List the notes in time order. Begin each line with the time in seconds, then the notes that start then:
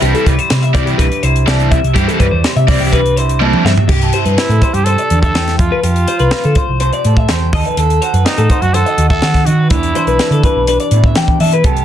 Already playing: C3 G3 B4
0.01 C2 E3 G3 C4 D4 E4 G4, closed hi-hat
0.14 E4 A4, closed hi-hat
0.26 C2 B4 D5, kick, closed hi-hat
0.39 C5, closed hi-hat
0.50 C3 G3, snare, closed hi-hat
0.62 E5, closed hi-hat
0.73 E3 G3 C4 E4 D5, kick, closed hi-hat
0.86 G4, closed hi-hat
0.98 B1 G2 B4, kick, closed hi-hat
1.12 closed hi-hat
1.23 C2 E4 C5, closed hi-hat
1.36 closed hi-hat
1.46 E3 G3 C4 E4 A4 D5, snare, closed hi-hat
1.60 closed hi-hat
1.71 C3 E5, kick, closed hi-hat
1.83 C2, closed hi-hat
1.94 G2 E3 G3 C4 E4 G4, kick, closed hi-hat
2.08 A4, closed hi-hat
2.20 G2 B4 D5, kick, closed hi-hat
2.31 E2 C5
2.44 G3, snare, closed hi-hat
2.56 C3 E5, closed hi-hat
2.67 E3 G3 C4 E4 D5, kick, open hi-hat
2.80 C2 G4
2.92 G2 B4, kick, closed hi-hat
3.06 closed hi-hat
3.16 E4 C5, closed hi-hat
3.29 closed hi-hat
3.40 E3 G3 C4 E4 A4 D5, high tom
3.53 mid tom
3.64 G2 C3 E5, snare
3.78 floor tom
3.89 C2 C3 G4, kick, crash
4.01 A4, closed hi-hat
4.13 E4 C5, closed hi-hat
4.25 G2 B4, closed hi-hat
4.38 C4 E4, snare, closed hi-hat
4.49 A2 A4, closed hi-hat
4.62 G3 C4 C5, kick, closed hi-hat
4.73 G2 G4, closed hi-hat
4.84 C4 A4 C5, closed hi-hat
4.98 D5, closed hi-hat
5.10 E2 D3, closed hi-hat
5.21 A4 E5, kick, closed hi-hat
5.35 E2 E3 G5, snare, closed hi-hat
5.48 snare, closed hi-hat
5.58 F2 F3 F4 E5, kick, closed hi-hat
5.72 B4
5.83 F2 F4 G4, closed hi-hat
5.96 closed hi-hat
6.08 C5, closed hi-hat
6.19 C2 B4, closed hi-hat
6.31 F4, snare, closed hi-hat
6.44 D3 A4, closed hi-hat
6.55 C5, kick, closed hi-hat
6.69 C2
6.80 C3 C5, closed hi-hat
6.93 D5, closed hi-hat
7.05 A2 A4, closed hi-hat
7.17 E5, kick
7.29 E2 C5 G5, snare, closed hi-hat
7.53 D#2 D#3 A4 D#5, kick, open hi-hat
7.65 B4, closed hi-hat
7.77 D#2 A4, closed hi-hat
7.90 closed hi-hat
8.02 F#4 C5, closed hi-hat
8.13 F#2 B4, closed hi-hat
8.25 D#4 G4, snare, closed hi-hat
8.37 A2 A4, closed hi-hat
8.50 F#4 C5, kick, closed hi-hat
8.62 F#2 F#4, closed hi-hat
8.74 D#3 F#4 A4 C5, closed hi-hat
8.86 D#5, closed hi-hat
8.98 D#2 F#4, closed hi-hat
9.10 A4 E5, kick, closed hi-hat
9.22 D#3 F#4 F#5, snare, closed hi-hat
9.34 kick, snare, closed hi-hat
9.46 D#3 D#4 F#4 D#5, closed hi-hat
9.59 B4
9.70 E2 E3 D4 E4 G4, kick, closed hi-hat
9.83 closed hi-hat
9.95 D4 C5, closed hi-hat
10.07 B1 B4, closed hi-hat
10.19 D4, snare, closed hi-hat
10.30 D3 A4, closed hi-hat
10.43 G3 D4 B4, kick, closed hi-hat
10.55 B1
10.67 D4 B4, closed hi-hat
10.80 D5, closed hi-hat
10.91 A2 B2 E4, closed hi-hat
11.04 E5, kick
11.15 E3 D4 G5, snare, closed hi-hat
11.28 kick
11.40 E3 D4 E5, open hi-hat
11.52 E4 B4, closed hi-hat
11.64 C2 C3 G4 A4, kick, closed hi-hat
11.77 closed hi-hat